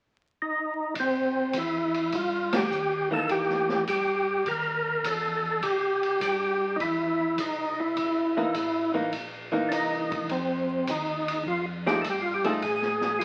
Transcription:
0.42 D#4
0.95 C2, kick, ride
1.00 C4
1.53 E2, kick, hi-hat pedal, ride
1.58 E4
1.94 ride
2.12 G2 F4, kick, ride
2.53 G4, snare, ride
2.70 D#2, hi-hat pedal
3.11 E3 A#3 D#4 A4
3.29 E2 G4, kick, ride
3.49 snare
3.69 snare
3.87 G2 G4, kick, hi-hat pedal, ride
4.46 D#2 A#4, kick, ride
5.04 E2 A4, kick, hi-hat pedal, ride
5.62 C2 G4, kick, ride
6.03 ride
6.21 G2 G4, kick, hi-hat pedal, ride
6.76 E2 D#4, kick, ride
6.81 E4
7.38 C2 D#4, kick, hi-hat pedal, ride
7.80 E4
7.96 G1, kick, ride
8.37 E3 A#3 D#4
8.54 A1, kick, hi-hat pedal, ride
8.94 E3 A#3 D#4
9.12 A#1, kick, ride
9.52 E3 A#3 D#4
9.69 C2 D4, kick, hi-hat pedal, ride
9.73 D#4
10.12 kick, ride
10.29 F2 C4, kick, ride
10.87 D#2 D#4, kick, hi-hat pedal, ride
11.28 ride
11.46 F2 F4, kick
11.86 F3 A3 D#4 G4 G#4, snare
12.02 G2 A4, kick, hi-hat pedal, ride
12.10 G4
12.22 F4
12.34 G4
12.44 F3 A3 D#4 G#4 A4, ride
12.62 A2 G#4, kick, ride
12.82 snare
13.01 snare
13.19 G2 F4 G#4, kick, hi-hat pedal, ride

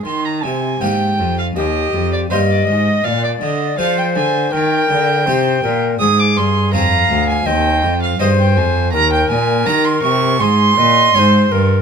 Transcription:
0.05 D#3 C6
0.25 A#5
0.43 C3 G#5
0.80 G#2 A#3 D#4 G4 G5
1.19 F2
1.39 F5
1.56 D#2 A#3 G4 D#5
1.93 F2
2.13 D5
2.30 G2 A#3 D#4 G4 C5 D#5
2.50 D5
2.67 G#2 D#5
3.04 A#2 D5 F5
3.24 D5
3.41 D3 D#5
3.78 F3 D4 G#4 C5 F5
3.99 G5
4.16 D3 G#5
4.52 D#3 A#4 G5
4.90 D3
5.26 C3 D#4 G4 C5
5.63 A#2 A#4
5.99 G#2 G#3 G#4 D#6
6.20 D6
6.37 G2 C6
6.73 F2 C4 D#4 G#4 F5 A#5
7.10 D2
7.29 G#5
7.46 D#2 C4 D#5 G5
7.82 F2
8.03 F5
8.20 G2 C4 D#4 G#4 C5 D#5
8.39 G5
8.56 F2 G#5
8.93 D#2 A#4 A#5
9.13 G5
9.30 A#2 G#5
9.66 D#3 D#4 G4 A#5
9.85 C6
10.03 C3 C#6
10.40 G#2 G#3 G#4 C6
10.78 A#2 D#5
11.14 G#2 D#4 G#4 C#5
11.19 C5
11.52 G2 A#4

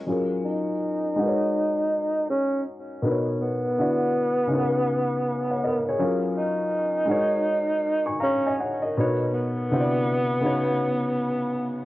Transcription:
0.07 F#3 C#4 F4 G#4 A#4
0.45 D#4
1.16 G#3 D#4 F#4
1.21 A#4 B4
1.28 C#5
2.29 C#4
3.02 B2 B3 D#4 A#4 B4
3.11 C#5
3.40 B3
3.77 D3 D4 E4 F#4 D5
4.47 C#3 C#4 D#4
4.51 F#4 A#4
4.59 B4
5.50 C#5 F#5
5.64 A#4 D#5
5.88 G#4 C#5
5.99 F#3 C#4 F4 G#4 A#4
6.37 D#4
7.05 G#3 D#4 F#4
7.10 A#4 C#5
8.06 G#5 C#6
8.20 C#4 F5 A#5
8.47 D#5 G#5
8.60 C#5 F#5
8.82 A#4 D#5
8.97 B2 B3 D#4 A#4 C#5
9.33 B3
9.70 C3 D3 E4 F#4 C5
9.80 D5
10.40 C#3 B3 D#4
10.45 F#4 C#5

